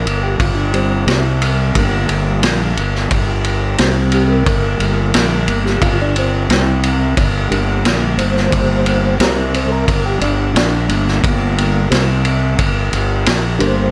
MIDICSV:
0, 0, Header, 1, 4, 480
1, 0, Start_track
1, 0, Key_signature, -2, "minor"
1, 0, Tempo, 677201
1, 1245, Time_signature, 4, 2, 24, 8
1, 9860, End_track
2, 0, Start_track
2, 0, Title_t, "Tonewheel organ"
2, 0, Program_c, 0, 16
2, 0, Note_on_c, 0, 70, 84
2, 137, Note_off_c, 0, 70, 0
2, 164, Note_on_c, 0, 67, 81
2, 276, Note_off_c, 0, 67, 0
2, 285, Note_on_c, 0, 65, 92
2, 390, Note_on_c, 0, 62, 78
2, 397, Note_off_c, 0, 65, 0
2, 509, Note_off_c, 0, 62, 0
2, 521, Note_on_c, 0, 55, 78
2, 531, Note_on_c, 0, 60, 96
2, 753, Note_off_c, 0, 55, 0
2, 758, Note_on_c, 0, 48, 48
2, 760, Note_off_c, 0, 60, 0
2, 762, Note_on_c, 0, 55, 47
2, 769, Note_on_c, 0, 60, 58
2, 1218, Note_off_c, 0, 48, 0
2, 1220, Note_off_c, 0, 55, 0
2, 1223, Note_off_c, 0, 60, 0
2, 1236, Note_on_c, 0, 50, 54
2, 1241, Note_on_c, 0, 55, 52
2, 1245, Note_on_c, 0, 58, 63
2, 1932, Note_off_c, 0, 50, 0
2, 1935, Note_off_c, 0, 55, 0
2, 1937, Note_off_c, 0, 58, 0
2, 2689, Note_on_c, 0, 48, 57
2, 2691, Note_on_c, 0, 60, 60
2, 2692, Note_on_c, 0, 55, 49
2, 2936, Note_on_c, 0, 67, 90
2, 3024, Note_on_c, 0, 69, 73
2, 3043, Note_off_c, 0, 67, 0
2, 3052, Note_off_c, 0, 69, 0
2, 3055, Note_on_c, 0, 70, 96
2, 3143, Note_off_c, 0, 48, 0
2, 3144, Note_off_c, 0, 60, 0
2, 3145, Note_off_c, 0, 55, 0
2, 3394, Note_on_c, 0, 50, 56
2, 3396, Note_on_c, 0, 55, 49
2, 3402, Note_on_c, 0, 58, 58
2, 3981, Note_off_c, 0, 70, 0
2, 4009, Note_on_c, 0, 67, 84
2, 4091, Note_off_c, 0, 50, 0
2, 4092, Note_off_c, 0, 55, 0
2, 4095, Note_off_c, 0, 58, 0
2, 4119, Note_off_c, 0, 67, 0
2, 4128, Note_on_c, 0, 65, 82
2, 4238, Note_off_c, 0, 65, 0
2, 4264, Note_on_c, 0, 62, 84
2, 4367, Note_off_c, 0, 62, 0
2, 4387, Note_on_c, 0, 60, 88
2, 4608, Note_off_c, 0, 60, 0
2, 4609, Note_on_c, 0, 48, 51
2, 4614, Note_on_c, 0, 55, 46
2, 4616, Note_on_c, 0, 60, 56
2, 5063, Note_off_c, 0, 48, 0
2, 5065, Note_off_c, 0, 55, 0
2, 5067, Note_off_c, 0, 60, 0
2, 5321, Note_on_c, 0, 50, 54
2, 5325, Note_on_c, 0, 55, 49
2, 5329, Note_on_c, 0, 58, 60
2, 5798, Note_on_c, 0, 72, 93
2, 6493, Note_off_c, 0, 50, 0
2, 6496, Note_off_c, 0, 55, 0
2, 6498, Note_off_c, 0, 58, 0
2, 6499, Note_off_c, 0, 72, 0
2, 6522, Note_on_c, 0, 48, 52
2, 6528, Note_on_c, 0, 55, 46
2, 6528, Note_on_c, 0, 60, 60
2, 6533, Note_on_c, 0, 70, 87
2, 6761, Note_off_c, 0, 70, 0
2, 6774, Note_on_c, 0, 72, 88
2, 6842, Note_off_c, 0, 48, 0
2, 6845, Note_off_c, 0, 55, 0
2, 6845, Note_off_c, 0, 60, 0
2, 6857, Note_on_c, 0, 69, 60
2, 6881, Note_off_c, 0, 72, 0
2, 6886, Note_off_c, 0, 69, 0
2, 6891, Note_on_c, 0, 70, 91
2, 7120, Note_off_c, 0, 70, 0
2, 7129, Note_on_c, 0, 67, 77
2, 7238, Note_off_c, 0, 67, 0
2, 7244, Note_on_c, 0, 62, 84
2, 7457, Note_on_c, 0, 61, 67
2, 7476, Note_off_c, 0, 62, 0
2, 7485, Note_off_c, 0, 61, 0
2, 7493, Note_on_c, 0, 62, 99
2, 7715, Note_on_c, 0, 50, 65
2, 7716, Note_on_c, 0, 55, 50
2, 7723, Note_on_c, 0, 58, 72
2, 7954, Note_off_c, 0, 62, 0
2, 8410, Note_off_c, 0, 50, 0
2, 8411, Note_off_c, 0, 55, 0
2, 8414, Note_off_c, 0, 58, 0
2, 8431, Note_on_c, 0, 48, 54
2, 8438, Note_on_c, 0, 55, 48
2, 8443, Note_on_c, 0, 60, 58
2, 8892, Note_off_c, 0, 48, 0
2, 8896, Note_off_c, 0, 55, 0
2, 8899, Note_off_c, 0, 60, 0
2, 9631, Note_on_c, 0, 50, 63
2, 9632, Note_on_c, 0, 55, 53
2, 9642, Note_on_c, 0, 58, 69
2, 9646, Note_on_c, 0, 72, 107
2, 9860, Note_off_c, 0, 50, 0
2, 9860, Note_off_c, 0, 55, 0
2, 9860, Note_off_c, 0, 58, 0
2, 9860, Note_off_c, 0, 72, 0
2, 9860, End_track
3, 0, Start_track
3, 0, Title_t, "Fingered electric bass"
3, 0, Program_c, 1, 33
3, 39, Note_on_c, 1, 31, 74
3, 265, Note_off_c, 1, 31, 0
3, 278, Note_on_c, 1, 31, 89
3, 734, Note_off_c, 1, 31, 0
3, 759, Note_on_c, 1, 36, 95
3, 1214, Note_off_c, 1, 36, 0
3, 1244, Note_on_c, 1, 31, 91
3, 1468, Note_off_c, 1, 31, 0
3, 1484, Note_on_c, 1, 31, 76
3, 1708, Note_off_c, 1, 31, 0
3, 1723, Note_on_c, 1, 34, 90
3, 1947, Note_off_c, 1, 34, 0
3, 1967, Note_on_c, 1, 31, 83
3, 2190, Note_off_c, 1, 31, 0
3, 2204, Note_on_c, 1, 31, 83
3, 2657, Note_off_c, 1, 31, 0
3, 2689, Note_on_c, 1, 36, 89
3, 3139, Note_off_c, 1, 36, 0
3, 3163, Note_on_c, 1, 31, 92
3, 3387, Note_off_c, 1, 31, 0
3, 3398, Note_on_c, 1, 31, 78
3, 3625, Note_off_c, 1, 31, 0
3, 3653, Note_on_c, 1, 34, 96
3, 3873, Note_off_c, 1, 34, 0
3, 3884, Note_on_c, 1, 31, 84
3, 4107, Note_off_c, 1, 31, 0
3, 4122, Note_on_c, 1, 31, 85
3, 4575, Note_off_c, 1, 31, 0
3, 4601, Note_on_c, 1, 36, 94
3, 5054, Note_off_c, 1, 36, 0
3, 5084, Note_on_c, 1, 31, 81
3, 5308, Note_off_c, 1, 31, 0
3, 5325, Note_on_c, 1, 31, 77
3, 5547, Note_off_c, 1, 31, 0
3, 5565, Note_on_c, 1, 34, 98
3, 5787, Note_off_c, 1, 34, 0
3, 5797, Note_on_c, 1, 31, 84
3, 6023, Note_off_c, 1, 31, 0
3, 6041, Note_on_c, 1, 31, 89
3, 6494, Note_off_c, 1, 31, 0
3, 6519, Note_on_c, 1, 36, 95
3, 6973, Note_off_c, 1, 36, 0
3, 7001, Note_on_c, 1, 31, 84
3, 7225, Note_off_c, 1, 31, 0
3, 7237, Note_on_c, 1, 31, 76
3, 7463, Note_off_c, 1, 31, 0
3, 7476, Note_on_c, 1, 34, 100
3, 7702, Note_off_c, 1, 34, 0
3, 7721, Note_on_c, 1, 31, 82
3, 7945, Note_off_c, 1, 31, 0
3, 7963, Note_on_c, 1, 31, 84
3, 8414, Note_off_c, 1, 31, 0
3, 8446, Note_on_c, 1, 36, 97
3, 8896, Note_off_c, 1, 36, 0
3, 8920, Note_on_c, 1, 31, 86
3, 9144, Note_off_c, 1, 31, 0
3, 9163, Note_on_c, 1, 31, 81
3, 9386, Note_off_c, 1, 31, 0
3, 9409, Note_on_c, 1, 34, 104
3, 9628, Note_off_c, 1, 34, 0
3, 9636, Note_on_c, 1, 31, 88
3, 9860, Note_off_c, 1, 31, 0
3, 9860, End_track
4, 0, Start_track
4, 0, Title_t, "Drums"
4, 48, Note_on_c, 9, 51, 67
4, 119, Note_off_c, 9, 51, 0
4, 282, Note_on_c, 9, 36, 104
4, 282, Note_on_c, 9, 51, 85
4, 353, Note_off_c, 9, 36, 0
4, 353, Note_off_c, 9, 51, 0
4, 522, Note_on_c, 9, 51, 69
4, 593, Note_off_c, 9, 51, 0
4, 763, Note_on_c, 9, 51, 82
4, 769, Note_on_c, 9, 38, 100
4, 834, Note_off_c, 9, 51, 0
4, 840, Note_off_c, 9, 38, 0
4, 1004, Note_on_c, 9, 51, 78
4, 1075, Note_off_c, 9, 51, 0
4, 1241, Note_on_c, 9, 51, 102
4, 1242, Note_on_c, 9, 36, 92
4, 1312, Note_off_c, 9, 51, 0
4, 1313, Note_off_c, 9, 36, 0
4, 1480, Note_on_c, 9, 51, 72
4, 1551, Note_off_c, 9, 51, 0
4, 1721, Note_on_c, 9, 51, 101
4, 1728, Note_on_c, 9, 38, 111
4, 1792, Note_off_c, 9, 51, 0
4, 1799, Note_off_c, 9, 38, 0
4, 1966, Note_on_c, 9, 51, 66
4, 2036, Note_off_c, 9, 51, 0
4, 2092, Note_on_c, 9, 38, 28
4, 2162, Note_off_c, 9, 38, 0
4, 2202, Note_on_c, 9, 51, 98
4, 2204, Note_on_c, 9, 36, 109
4, 2273, Note_off_c, 9, 51, 0
4, 2275, Note_off_c, 9, 36, 0
4, 2441, Note_on_c, 9, 51, 70
4, 2512, Note_off_c, 9, 51, 0
4, 2682, Note_on_c, 9, 51, 90
4, 2688, Note_on_c, 9, 38, 103
4, 2753, Note_off_c, 9, 51, 0
4, 2759, Note_off_c, 9, 38, 0
4, 2918, Note_on_c, 9, 51, 72
4, 2989, Note_off_c, 9, 51, 0
4, 3163, Note_on_c, 9, 51, 86
4, 3164, Note_on_c, 9, 36, 110
4, 3234, Note_off_c, 9, 51, 0
4, 3235, Note_off_c, 9, 36, 0
4, 3403, Note_on_c, 9, 51, 65
4, 3474, Note_off_c, 9, 51, 0
4, 3642, Note_on_c, 9, 51, 95
4, 3649, Note_on_c, 9, 38, 107
4, 3713, Note_off_c, 9, 51, 0
4, 3719, Note_off_c, 9, 38, 0
4, 3882, Note_on_c, 9, 51, 68
4, 3953, Note_off_c, 9, 51, 0
4, 4011, Note_on_c, 9, 38, 31
4, 4082, Note_off_c, 9, 38, 0
4, 4123, Note_on_c, 9, 36, 97
4, 4124, Note_on_c, 9, 51, 90
4, 4194, Note_off_c, 9, 36, 0
4, 4195, Note_off_c, 9, 51, 0
4, 4365, Note_on_c, 9, 51, 66
4, 4436, Note_off_c, 9, 51, 0
4, 4606, Note_on_c, 9, 51, 80
4, 4612, Note_on_c, 9, 38, 98
4, 4677, Note_off_c, 9, 51, 0
4, 4683, Note_off_c, 9, 38, 0
4, 4844, Note_on_c, 9, 51, 70
4, 4915, Note_off_c, 9, 51, 0
4, 5084, Note_on_c, 9, 36, 110
4, 5084, Note_on_c, 9, 51, 91
4, 5154, Note_off_c, 9, 51, 0
4, 5155, Note_off_c, 9, 36, 0
4, 5328, Note_on_c, 9, 51, 67
4, 5398, Note_off_c, 9, 51, 0
4, 5565, Note_on_c, 9, 51, 101
4, 5571, Note_on_c, 9, 38, 114
4, 5635, Note_off_c, 9, 51, 0
4, 5642, Note_off_c, 9, 38, 0
4, 5802, Note_on_c, 9, 51, 74
4, 5873, Note_off_c, 9, 51, 0
4, 5930, Note_on_c, 9, 38, 31
4, 6001, Note_off_c, 9, 38, 0
4, 6042, Note_on_c, 9, 36, 107
4, 6043, Note_on_c, 9, 51, 94
4, 6113, Note_off_c, 9, 36, 0
4, 6114, Note_off_c, 9, 51, 0
4, 6280, Note_on_c, 9, 51, 72
4, 6351, Note_off_c, 9, 51, 0
4, 6520, Note_on_c, 9, 51, 91
4, 6526, Note_on_c, 9, 38, 106
4, 6591, Note_off_c, 9, 51, 0
4, 6597, Note_off_c, 9, 38, 0
4, 6764, Note_on_c, 9, 51, 70
4, 6835, Note_off_c, 9, 51, 0
4, 7003, Note_on_c, 9, 36, 96
4, 7003, Note_on_c, 9, 51, 93
4, 7074, Note_off_c, 9, 36, 0
4, 7074, Note_off_c, 9, 51, 0
4, 7239, Note_on_c, 9, 51, 68
4, 7310, Note_off_c, 9, 51, 0
4, 7484, Note_on_c, 9, 51, 96
4, 7491, Note_on_c, 9, 38, 121
4, 7555, Note_off_c, 9, 51, 0
4, 7562, Note_off_c, 9, 38, 0
4, 7722, Note_on_c, 9, 51, 66
4, 7793, Note_off_c, 9, 51, 0
4, 7852, Note_on_c, 9, 38, 30
4, 7923, Note_off_c, 9, 38, 0
4, 7965, Note_on_c, 9, 36, 109
4, 7968, Note_on_c, 9, 51, 95
4, 8036, Note_off_c, 9, 36, 0
4, 8039, Note_off_c, 9, 51, 0
4, 8210, Note_on_c, 9, 51, 72
4, 8281, Note_off_c, 9, 51, 0
4, 8446, Note_on_c, 9, 51, 84
4, 8452, Note_on_c, 9, 38, 107
4, 8517, Note_off_c, 9, 51, 0
4, 8523, Note_off_c, 9, 38, 0
4, 8681, Note_on_c, 9, 51, 68
4, 8752, Note_off_c, 9, 51, 0
4, 8921, Note_on_c, 9, 51, 89
4, 8923, Note_on_c, 9, 36, 95
4, 8992, Note_off_c, 9, 51, 0
4, 8993, Note_off_c, 9, 36, 0
4, 9163, Note_on_c, 9, 51, 68
4, 9234, Note_off_c, 9, 51, 0
4, 9401, Note_on_c, 9, 51, 101
4, 9407, Note_on_c, 9, 38, 122
4, 9472, Note_off_c, 9, 51, 0
4, 9478, Note_off_c, 9, 38, 0
4, 9641, Note_on_c, 9, 51, 67
4, 9712, Note_off_c, 9, 51, 0
4, 9860, End_track
0, 0, End_of_file